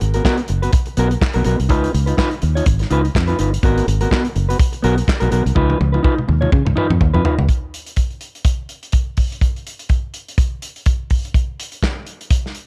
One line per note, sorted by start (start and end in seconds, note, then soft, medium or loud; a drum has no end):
0.00 0.19 G#1 medium
0.00 muted clean electric guitar stroke soft
0.00 closed hi-hat medium
0.14 0.23 B3 medium
0.14 0.24 F#4 medium
0.14 0.24 A#4 medium
0.14 closed hi-hat soft
0.25 0.40 B3 medium
0.25 0.39 F#4 medium
0.25 0.38 A#4 medium
0.25 kick loud
0.25 snare loud
0.25 clap medium
0.38 muted clean electric guitar stroke soft
0.38 closed hi-hat soft
0.48 0.67 F#1 medium
0.48 muted clean electric guitar stroke soft
0.48 closed hi-hat medium
0.62 0.71 B3 medium
0.62 0.73 F#4 medium
0.62 0.72 B4 medium
0.62 closed hi-hat soft
0.73 muted clean electric guitar stroke soft
0.73 kick loud
0.73 closed hi-hat medium
0.86 muted clean electric guitar stroke soft
0.86 closed hi-hat soft
0.97 1.15 B1 medium
0.97 1.13 B3 medium
0.97 1.11 F#4 medium
0.97 1.10 A#4 medium
0.97 closed hi-hat medium
1.11 muted clean electric guitar stroke medium
1.11 closed hi-hat soft
1.21 muted clean electric guitar stroke soft
1.21 kick loud
1.21 snare loud
1.21 clap loud
1.33 1.43 B1 medium
1.33 1.43 B3 medium
1.33 1.45 F#4 medium
1.33 1.45 A#4 medium
1.33 closed hi-hat soft
1.44 1.56 B1 medium
1.44 1.57 B3 medium
1.44 1.58 F#4 medium
1.44 1.57 A#4 medium
1.44 closed hi-hat medium
1.59 1.70 C2 medium
1.59 muted clean electric guitar stroke soft
1.59 closed hi-hat soft
1.69 1.87 C#2 loud
1.69 1.92 D#4 medium
1.69 1.92 F4 medium
1.69 1.93 B4 medium
1.69 kick loud
1.69 closed hi-hat medium
1.84 closed hi-hat soft
1.93 2.12 C#2 medium
1.93 muted clean electric guitar stroke soft
1.93 closed hi-hat medium
2.06 2.16 D#4 soft
2.06 2.17 F4 medium
2.06 2.17 B4 medium
2.06 closed hi-hat soft
2.17 2.33 D#4 medium
2.17 2.32 F4 medium
2.17 2.30 B4 loud
2.17 kick medium
2.17 snare loud
2.17 clap medium
2.31 muted clean electric guitar stroke medium
2.31 closed hi-hat soft
2.42 2.60 D#2 medium
2.42 muted clean electric guitar stroke soft
2.42 closed hi-hat medium
2.55 2.66 D#4 medium
2.55 2.66 F4 medium
2.55 2.65 C#5 medium
2.55 closed hi-hat soft
2.66 2.84 G#1 medium
2.66 muted clean electric guitar stroke medium
2.66 kick loud
2.66 closed hi-hat medium
2.79 muted clean electric guitar stroke soft
2.79 snare soft
2.79 closed hi-hat soft
2.90 3.08 C#2 medium
2.90 3.06 D#4 medium
2.90 3.04 F4 medium
2.90 3.03 B4 medium
2.90 closed hi-hat medium
3.04 muted clean electric guitar stroke soft
3.04 closed hi-hat soft
3.15 3.33 F2 loud
3.15 muted clean electric guitar stroke soft
3.15 kick loud
3.15 snare loud
3.15 clap loud
3.27 3.38 D#4 medium
3.27 3.39 F4 medium
3.27 3.40 B4 medium
3.27 closed hi-hat soft
3.39 3.57 G1 medium
3.39 3.51 D#4 medium
3.39 3.52 F4 medium
3.39 3.52 B4 medium
3.39 closed hi-hat medium
3.53 muted clean electric guitar stroke soft
3.53 closed hi-hat medium
3.63 3.81 G#1 loud
3.63 3.85 B3 medium
3.63 3.86 F#4 medium
3.63 3.86 A#4 medium
3.63 kick loud
3.63 closed hi-hat medium
3.78 closed hi-hat medium
3.87 4.05 G#1 loud
3.87 closed hi-hat medium
4.01 4.10 B3 medium
4.01 4.11 F#4 medium
4.01 4.10 A#4 medium
4.01 closed hi-hat medium
4.11 4.26 B3 medium
4.11 4.25 F#4 medium
4.11 4.23 A#4 medium
4.11 kick medium
4.11 snare loud
4.11 clap medium
4.24 muted clean electric guitar stroke soft
4.24 closed hi-hat soft
4.35 4.53 F#1 medium
4.35 muted clean electric guitar stroke soft
4.35 closed hi-hat medium
4.49 4.58 B3 soft
4.49 4.59 F#4 medium
4.49 4.58 B4 medium
4.49 closed hi-hat soft
4.59 muted clean electric guitar stroke soft
4.59 kick loud
4.59 closed hi-hat loud
4.73 muted clean electric guitar stroke soft
4.73 closed hi-hat soft
4.83 5.01 B1 medium
4.83 4.98 B3 medium
4.83 4.97 F#4 medium
4.83 4.96 A#4 loud
4.83 closed hi-hat medium
4.97 muted clean electric guitar stroke medium
4.97 closed hi-hat soft
5.07 muted clean electric guitar stroke soft
5.07 kick loud
5.07 snare loud
5.07 clap loud
5.20 5.29 B1 medium
5.20 5.30 B3 medium
5.20 5.31 F#4 medium
5.20 5.31 A#4 medium
5.20 closed hi-hat medium
5.31 5.42 B1 loud
5.31 5.43 B3 medium
5.31 5.44 F#4 medium
5.31 5.44 A#4 medium
5.31 closed hi-hat medium
5.45 5.53 C2 medium
5.45 muted clean electric guitar stroke soft
5.45 closed hi-hat medium
5.55 5.74 C#2 loud
5.55 5.78 D#4 medium
5.55 5.78 F4 medium
5.55 5.79 B4 medium
5.55 kick loud
5.55 high tom medium
5.70 high tom medium
5.80 5.98 C#2 medium
5.80 muted clean electric guitar stroke soft
5.80 high tom medium
5.92 6.02 D#4 medium
5.92 6.03 F4 medium
5.92 6.02 B4 medium
5.92 high tom medium
6.03 6.18 D#4 medium
6.03 6.17 F4 medium
6.03 6.16 B4 loud
6.03 kick loud
6.03 mid tom medium
6.17 muted clean electric guitar stroke soft
6.17 mid tom medium
6.28 6.46 D#2 medium
6.28 muted clean electric guitar stroke soft
6.28 mid tom medium
6.41 6.51 D#4 soft
6.41 6.51 F4 medium
6.41 6.51 C#5 medium
6.41 mid tom medium
6.52 6.62 C#3 loud
6.52 muted clean electric guitar stroke soft
6.52 kick loud
6.52 mid tom medium
6.65 6.73 C#2 medium
6.65 muted clean electric guitar stroke soft
6.65 mid tom medium
6.76 6.91 D#4 medium
6.76 6.89 F4 medium
6.76 6.88 B4 loud
6.76 mid tom medium
6.90 6.98 F2 medium
6.90 muted clean electric guitar stroke soft
6.90 mid tom medium
7.01 7.11 D#2 medium
7.01 muted clean electric guitar stroke soft
7.01 kick loud
7.01 floor tom medium
7.14 7.22 F2 medium
7.14 7.23 D#4 medium
7.14 7.24 F4 medium
7.14 7.25 B4 medium
7.14 floor tom medium
7.24 7.37 D#4 medium
7.24 7.37 F4 medium
7.24 7.36 B4 medium
7.24 floor tom loud
7.37 7.46 C#2 medium
7.37 muted clean electric guitar stroke soft
7.37 floor tom medium
7.49 kick medium
7.49 closed hi-hat medium
7.74 closed hi-hat medium
7.86 closed hi-hat soft
7.96 kick medium
7.96 closed hi-hat medium
8.10 closed hi-hat soft
8.21 closed hi-hat medium
8.35 closed hi-hat soft
8.45 kick loud
8.45 closed hi-hat medium
8.69 closed hi-hat medium
8.83 closed hi-hat soft
8.92 kick loud
8.92 closed hi-hat medium
9.17 kick medium
9.17 open hi-hat medium
9.32 closed hi-hat soft
9.41 kick medium
9.41 closed hi-hat medium
9.56 closed hi-hat soft
9.67 closed hi-hat medium
9.79 closed hi-hat soft
9.89 kick medium
9.89 closed hi-hat medium
10.14 closed hi-hat medium
10.28 closed hi-hat soft
10.38 kick loud
10.38 closed hi-hat medium
10.62 closed hi-hat medium
10.76 closed hi-hat soft
10.86 kick loud
10.86 closed hi-hat medium
11.10 kick medium
11.10 open hi-hat medium
11.25 closed hi-hat soft
11.34 kick loud
11.34 closed hi-hat medium
11.60 closed hi-hat medium
11.72 closed hi-hat soft
11.83 kick medium
11.83 snare loud
11.83 clap medium
12.06 closed hi-hat medium
12.21 closed hi-hat soft
12.30 kick loud
12.30 closed hi-hat medium
12.46 snare soft
12.55 closed hi-hat medium